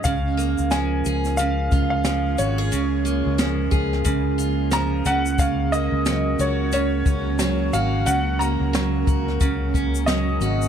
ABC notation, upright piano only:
X:1
M:4/4
L:1/16
Q:"Swing 16ths" 1/4=90
K:Db
V:1 name="Upright piano"
f4 a4 f3 f3 d2- | d6 z6 b2 g2 | f2 e4 d2 d6 f2 | g2 b8- b2 e4 |]